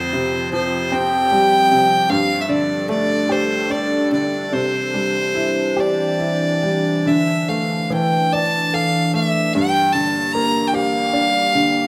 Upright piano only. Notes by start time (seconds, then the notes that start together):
Already playing: F2
0.13 C3
0.52 F3
0.92 C4
1.32 G3
1.71 C3
2.10 G2
2.49 D3
2.89 A3
3.29 G4
3.70 D4
4.12 D3
4.52 C3
4.94 G3
5.35 E4
5.77 G4
6.19 E4
6.63 G3
7.06 D3
7.49 A3
7.90 E3
8.33 D5
8.73 A4
9.14 A3
9.55 G2
9.95 D3
10.35 A#3
10.74 G4
11.13 D4
11.55 D3